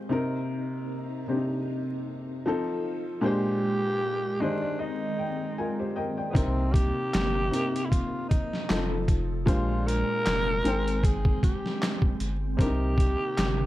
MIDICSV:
0, 0, Header, 1, 6, 480
1, 0, Start_track
1, 0, Key_signature, -3, "minor"
1, 0, Tempo, 779221
1, 72, Time_signature, 4, 2, 24, 8
1, 8416, End_track
2, 0, Start_track
2, 0, Title_t, "Tenor saxophone"
2, 0, Program_c, 0, 66
2, 2007, Note_on_c, 0, 67, 111
2, 2717, Note_on_c, 0, 62, 94
2, 2726, Note_off_c, 0, 67, 0
2, 2962, Note_on_c, 0, 63, 87
2, 2971, Note_off_c, 0, 62, 0
2, 3677, Note_off_c, 0, 63, 0
2, 3882, Note_on_c, 0, 59, 63
2, 3920, Note_on_c, 0, 60, 90
2, 3929, Note_off_c, 0, 59, 0
2, 4144, Note_on_c, 0, 67, 115
2, 4153, Note_off_c, 0, 60, 0
2, 4837, Note_on_c, 0, 64, 68
2, 4846, Note_off_c, 0, 67, 0
2, 4862, Note_on_c, 0, 65, 95
2, 4872, Note_off_c, 0, 64, 0
2, 5103, Note_off_c, 0, 65, 0
2, 5106, Note_on_c, 0, 63, 85
2, 5565, Note_off_c, 0, 63, 0
2, 5838, Note_on_c, 0, 65, 94
2, 6081, Note_on_c, 0, 70, 122
2, 6090, Note_off_c, 0, 65, 0
2, 6809, Note_on_c, 0, 68, 96
2, 6818, Note_off_c, 0, 70, 0
2, 7041, Note_off_c, 0, 68, 0
2, 7045, Note_on_c, 0, 67, 93
2, 7494, Note_off_c, 0, 67, 0
2, 7771, Note_on_c, 0, 67, 117
2, 8416, Note_off_c, 0, 67, 0
2, 8416, End_track
3, 0, Start_track
3, 0, Title_t, "Felt piano"
3, 0, Program_c, 1, 0
3, 0, Control_c, 1, 64, 127
3, 0, Note_on_c, 1, 51, 86
3, 0, Note_on_c, 1, 56, 93
3, 0, Note_on_c, 1, 67, 87
3, 0, Note_on_c, 1, 72, 106
3, 57, Note_on_c, 1, 48, 96
3, 64, Note_on_c, 1, 60, 81
3, 67, Note_on_c, 1, 63, 86
3, 75, Note_on_c, 1, 70, 109
3, 79, Control_c, 1, 64, 0
3, 81, Note_off_c, 1, 51, 0
3, 84, Note_off_c, 1, 56, 0
3, 84, Note_off_c, 1, 67, 0
3, 86, Note_off_c, 1, 72, 0
3, 201, Control_c, 1, 64, 127
3, 737, Note_off_c, 1, 48, 0
3, 741, Note_off_c, 1, 60, 0
3, 742, Note_off_c, 1, 63, 0
3, 747, Note_off_c, 1, 70, 0
3, 790, Note_on_c, 1, 48, 76
3, 794, Note_on_c, 1, 60, 74
3, 797, Note_on_c, 1, 62, 47
3, 805, Note_on_c, 1, 67, 73
3, 838, Note_on_c, 1, 63, 64
3, 839, Note_off_c, 1, 62, 0
3, 1509, Note_off_c, 1, 60, 0
3, 1511, Note_off_c, 1, 48, 0
3, 1513, Note_off_c, 1, 63, 0
3, 1513, Note_on_c, 1, 53, 102
3, 1518, Note_on_c, 1, 60, 93
3, 1519, Note_off_c, 1, 67, 0
3, 1521, Control_c, 1, 64, 0
3, 1522, Note_on_c, 1, 63, 95
3, 1527, Note_on_c, 1, 69, 117
3, 1618, Control_c, 1, 64, 127
3, 1961, Note_off_c, 1, 53, 0
3, 1964, Note_off_c, 1, 60, 0
3, 1966, Note_off_c, 1, 63, 0
3, 1968, Note_off_c, 1, 69, 0
3, 1978, Note_on_c, 1, 46, 102
3, 1981, Note_on_c, 1, 56, 100
3, 1986, Note_on_c, 1, 62, 101
3, 1990, Note_on_c, 1, 67, 103
3, 1996, Note_on_c, 1, 72, 111
3, 2000, Control_c, 1, 64, 0
3, 2104, Control_c, 1, 64, 127
3, 2658, Note_off_c, 1, 46, 0
3, 2660, Note_off_c, 1, 56, 0
3, 2662, Note_off_c, 1, 62, 0
3, 2664, Note_off_c, 1, 67, 0
3, 2667, Note_off_c, 1, 72, 0
3, 2713, Note_on_c, 1, 56, 83
3, 2718, Note_on_c, 1, 51, 75
3, 2721, Control_c, 1, 64, 0
3, 2721, Note_on_c, 1, 75, 74
3, 2725, Note_on_c, 1, 67, 82
3, 2730, Note_on_c, 1, 72, 91
3, 2822, Control_c, 1, 64, 127
3, 2841, Note_off_c, 1, 75, 0
3, 2847, Note_on_c, 1, 74, 71
3, 2946, Note_off_c, 1, 74, 0
3, 2951, Note_on_c, 1, 75, 72
3, 3175, Note_off_c, 1, 75, 0
3, 3196, Note_on_c, 1, 79, 66
3, 3417, Note_off_c, 1, 79, 0
3, 3439, Note_off_c, 1, 67, 0
3, 3439, Note_on_c, 1, 70, 64
3, 3439, Note_on_c, 1, 80, 67
3, 3441, Note_off_c, 1, 72, 0
3, 3443, Note_on_c, 1, 65, 54
3, 3562, Note_off_c, 1, 70, 0
3, 3564, Note_off_c, 1, 65, 0
3, 3568, Note_on_c, 1, 72, 60
3, 3570, Note_on_c, 1, 67, 55
3, 3610, Note_off_c, 1, 56, 0
3, 3612, Note_off_c, 1, 51, 0
3, 3659, Note_off_c, 1, 80, 0
3, 3669, Note_off_c, 1, 67, 0
3, 3669, Note_off_c, 1, 72, 0
3, 3670, Note_on_c, 1, 75, 69
3, 3671, Note_on_c, 1, 79, 68
3, 3677, Note_on_c, 1, 70, 58
3, 3793, Note_off_c, 1, 79, 0
3, 3797, Note_off_c, 1, 75, 0
3, 3801, Note_off_c, 1, 70, 0
3, 3802, Note_on_c, 1, 79, 66
3, 3806, Note_on_c, 1, 74, 50
3, 3899, Note_on_c, 1, 48, 98
3, 3902, Note_on_c, 1, 60, 82
3, 3908, Note_on_c, 1, 63, 82
3, 3912, Note_on_c, 1, 70, 86
3, 3919, Control_c, 1, 64, 0
3, 4022, Control_c, 1, 64, 127
3, 4032, Note_off_c, 1, 79, 0
3, 4034, Note_off_c, 1, 74, 0
3, 4579, Note_off_c, 1, 48, 0
3, 4580, Note_off_c, 1, 60, 0
3, 4583, Note_off_c, 1, 63, 0
3, 4585, Note_off_c, 1, 70, 0
3, 4624, Note_on_c, 1, 48, 76
3, 4626, Note_on_c, 1, 60, 57
3, 4632, Note_on_c, 1, 63, 60
3, 4638, Note_on_c, 1, 70, 77
3, 5347, Note_off_c, 1, 60, 0
3, 5348, Note_off_c, 1, 48, 0
3, 5350, Note_off_c, 1, 63, 0
3, 5353, Note_on_c, 1, 53, 78
3, 5355, Note_off_c, 1, 70, 0
3, 5356, Note_on_c, 1, 60, 72
3, 5360, Note_on_c, 1, 63, 75
3, 5362, Control_c, 1, 64, 0
3, 5367, Note_on_c, 1, 69, 84
3, 5469, Control_c, 1, 64, 127
3, 5801, Note_off_c, 1, 53, 0
3, 5803, Note_off_c, 1, 60, 0
3, 5805, Note_off_c, 1, 63, 0
3, 5808, Note_off_c, 1, 69, 0
3, 5824, Note_on_c, 1, 46, 110
3, 5827, Note_on_c, 1, 56, 94
3, 5833, Note_on_c, 1, 62, 98
3, 5835, Note_on_c, 1, 67, 90
3, 5839, Note_on_c, 1, 72, 115
3, 5841, Control_c, 1, 64, 0
3, 5951, Control_c, 1, 64, 127
3, 6501, Note_off_c, 1, 46, 0
3, 6502, Note_off_c, 1, 56, 0
3, 6505, Note_off_c, 1, 62, 0
3, 6506, Note_off_c, 1, 67, 0
3, 6508, Note_off_c, 1, 72, 0
3, 6557, Note_on_c, 1, 56, 86
3, 6561, Control_c, 1, 64, 0
3, 6561, Note_on_c, 1, 63, 85
3, 6567, Note_on_c, 1, 79, 88
3, 6570, Note_on_c, 1, 72, 100
3, 6669, Control_c, 1, 64, 127
3, 7452, Note_off_c, 1, 56, 0
3, 7454, Note_off_c, 1, 63, 0
3, 7457, Note_off_c, 1, 79, 0
3, 7458, Note_off_c, 1, 72, 0
3, 7743, Note_on_c, 1, 48, 97
3, 7750, Note_on_c, 1, 60, 91
3, 7756, Note_on_c, 1, 62, 71
3, 7761, Control_c, 1, 64, 0
3, 7761, Note_on_c, 1, 70, 104
3, 7796, Note_on_c, 1, 63, 94
3, 7798, Note_off_c, 1, 62, 0
3, 7878, Control_c, 1, 64, 127
3, 8416, Note_off_c, 1, 48, 0
3, 8416, Note_off_c, 1, 60, 0
3, 8416, Note_off_c, 1, 63, 0
3, 8416, Note_off_c, 1, 70, 0
3, 8416, End_track
4, 0, Start_track
4, 0, Title_t, "String machine"
4, 0, Program_c, 2, 50
4, 74, Note_on_c, 2, 48, 84
4, 74, Note_on_c, 2, 63, 90
4, 75, Note_on_c, 2, 58, 80
4, 1499, Note_off_c, 2, 48, 0
4, 1499, Note_off_c, 2, 58, 0
4, 1515, Note_on_c, 2, 69, 90
4, 1517, Note_on_c, 2, 53, 81
4, 1974, Note_off_c, 2, 63, 0
4, 1989, Note_off_c, 2, 69, 0
4, 1990, Note_off_c, 2, 53, 0
4, 1996, Note_on_c, 2, 58, 73
4, 1997, Note_on_c, 2, 56, 84
4, 1997, Note_on_c, 2, 62, 84
4, 2707, Note_off_c, 2, 58, 0
4, 2708, Note_off_c, 2, 62, 0
4, 2719, Note_on_c, 2, 51, 82
4, 2719, Note_on_c, 2, 60, 91
4, 3896, Note_off_c, 2, 56, 0
4, 3903, Note_off_c, 2, 60, 0
4, 3904, Note_off_c, 2, 51, 0
4, 3912, Note_on_c, 2, 48, 89
4, 3913, Note_on_c, 2, 63, 89
4, 3915, Note_on_c, 2, 58, 78
4, 5338, Note_off_c, 2, 48, 0
4, 5339, Note_off_c, 2, 58, 0
4, 5339, Note_off_c, 2, 63, 0
4, 5356, Note_on_c, 2, 69, 80
4, 5357, Note_on_c, 2, 53, 77
4, 5358, Note_on_c, 2, 63, 70
4, 5830, Note_off_c, 2, 53, 0
4, 5830, Note_off_c, 2, 63, 0
4, 5830, Note_off_c, 2, 69, 0
4, 5835, Note_on_c, 2, 58, 71
4, 5837, Note_on_c, 2, 56, 85
4, 5838, Note_on_c, 2, 62, 83
4, 6547, Note_off_c, 2, 58, 0
4, 6548, Note_off_c, 2, 62, 0
4, 6555, Note_on_c, 2, 60, 73
4, 6556, Note_on_c, 2, 79, 91
4, 7735, Note_off_c, 2, 56, 0
4, 7742, Note_off_c, 2, 60, 0
4, 7742, Note_off_c, 2, 79, 0
4, 7750, Note_on_c, 2, 58, 78
4, 7751, Note_on_c, 2, 51, 92
4, 7753, Note_on_c, 2, 48, 81
4, 8416, Note_off_c, 2, 48, 0
4, 8416, Note_off_c, 2, 51, 0
4, 8416, Note_off_c, 2, 58, 0
4, 8416, End_track
5, 0, Start_track
5, 0, Title_t, "Sub bass"
5, 0, Program_c, 3, 38
5, 3916, Note_on_c, 3, 36, 98
5, 4266, Note_off_c, 3, 36, 0
5, 4401, Note_on_c, 3, 31, 98
5, 4623, Note_off_c, 3, 31, 0
5, 5361, Note_on_c, 3, 29, 102
5, 5837, Note_on_c, 3, 34, 97
5, 5846, Note_off_c, 3, 29, 0
5, 6187, Note_off_c, 3, 34, 0
5, 6324, Note_on_c, 3, 29, 94
5, 6545, Note_off_c, 3, 29, 0
5, 6559, Note_on_c, 3, 32, 92
5, 7011, Note_off_c, 3, 32, 0
5, 7517, Note_on_c, 3, 31, 95
5, 7741, Note_off_c, 3, 31, 0
5, 7757, Note_on_c, 3, 36, 105
5, 8107, Note_off_c, 3, 36, 0
5, 8241, Note_on_c, 3, 31, 97
5, 8416, Note_off_c, 3, 31, 0
5, 8416, End_track
6, 0, Start_track
6, 0, Title_t, "Drums"
6, 3911, Note_on_c, 9, 36, 97
6, 3920, Note_on_c, 9, 42, 71
6, 3973, Note_off_c, 9, 36, 0
6, 3981, Note_off_c, 9, 42, 0
6, 4152, Note_on_c, 9, 36, 90
6, 4162, Note_on_c, 9, 42, 71
6, 4213, Note_off_c, 9, 36, 0
6, 4223, Note_off_c, 9, 42, 0
6, 4397, Note_on_c, 9, 42, 77
6, 4398, Note_on_c, 9, 39, 76
6, 4402, Note_on_c, 9, 38, 107
6, 4458, Note_off_c, 9, 42, 0
6, 4460, Note_off_c, 9, 39, 0
6, 4464, Note_off_c, 9, 38, 0
6, 4642, Note_on_c, 9, 42, 61
6, 4703, Note_off_c, 9, 42, 0
6, 4778, Note_on_c, 9, 42, 43
6, 4840, Note_off_c, 9, 42, 0
6, 4877, Note_on_c, 9, 36, 87
6, 4882, Note_on_c, 9, 42, 73
6, 4939, Note_off_c, 9, 36, 0
6, 4943, Note_off_c, 9, 42, 0
6, 5120, Note_on_c, 9, 36, 94
6, 5120, Note_on_c, 9, 42, 61
6, 5181, Note_off_c, 9, 36, 0
6, 5182, Note_off_c, 9, 42, 0
6, 5257, Note_on_c, 9, 38, 33
6, 5319, Note_off_c, 9, 38, 0
6, 5358, Note_on_c, 9, 39, 87
6, 5361, Note_on_c, 9, 38, 108
6, 5368, Note_on_c, 9, 42, 69
6, 5419, Note_off_c, 9, 39, 0
6, 5423, Note_off_c, 9, 38, 0
6, 5429, Note_off_c, 9, 42, 0
6, 5594, Note_on_c, 9, 36, 95
6, 5595, Note_on_c, 9, 42, 64
6, 5656, Note_off_c, 9, 36, 0
6, 5657, Note_off_c, 9, 42, 0
6, 5833, Note_on_c, 9, 36, 108
6, 5841, Note_on_c, 9, 42, 73
6, 5895, Note_off_c, 9, 36, 0
6, 5903, Note_off_c, 9, 42, 0
6, 6088, Note_on_c, 9, 42, 77
6, 6150, Note_off_c, 9, 42, 0
6, 6320, Note_on_c, 9, 42, 80
6, 6321, Note_on_c, 9, 39, 85
6, 6325, Note_on_c, 9, 38, 102
6, 6381, Note_off_c, 9, 42, 0
6, 6383, Note_off_c, 9, 39, 0
6, 6386, Note_off_c, 9, 38, 0
6, 6562, Note_on_c, 9, 42, 54
6, 6624, Note_off_c, 9, 42, 0
6, 6700, Note_on_c, 9, 42, 42
6, 6761, Note_off_c, 9, 42, 0
6, 6798, Note_on_c, 9, 36, 94
6, 6804, Note_on_c, 9, 42, 76
6, 6860, Note_off_c, 9, 36, 0
6, 6865, Note_off_c, 9, 42, 0
6, 6930, Note_on_c, 9, 36, 102
6, 6991, Note_off_c, 9, 36, 0
6, 7041, Note_on_c, 9, 36, 97
6, 7045, Note_on_c, 9, 42, 59
6, 7102, Note_off_c, 9, 36, 0
6, 7107, Note_off_c, 9, 42, 0
6, 7181, Note_on_c, 9, 38, 33
6, 7242, Note_off_c, 9, 38, 0
6, 7284, Note_on_c, 9, 39, 87
6, 7287, Note_on_c, 9, 38, 103
6, 7293, Note_on_c, 9, 42, 73
6, 7345, Note_off_c, 9, 39, 0
6, 7349, Note_off_c, 9, 38, 0
6, 7355, Note_off_c, 9, 42, 0
6, 7404, Note_on_c, 9, 36, 89
6, 7465, Note_off_c, 9, 36, 0
6, 7517, Note_on_c, 9, 42, 60
6, 7578, Note_off_c, 9, 42, 0
6, 7754, Note_on_c, 9, 36, 106
6, 7765, Note_on_c, 9, 42, 70
6, 7816, Note_off_c, 9, 36, 0
6, 7827, Note_off_c, 9, 42, 0
6, 7994, Note_on_c, 9, 36, 94
6, 8007, Note_on_c, 9, 42, 70
6, 8055, Note_off_c, 9, 36, 0
6, 8069, Note_off_c, 9, 42, 0
6, 8240, Note_on_c, 9, 42, 83
6, 8242, Note_on_c, 9, 39, 82
6, 8246, Note_on_c, 9, 38, 96
6, 8302, Note_off_c, 9, 42, 0
6, 8304, Note_off_c, 9, 39, 0
6, 8307, Note_off_c, 9, 38, 0
6, 8416, End_track
0, 0, End_of_file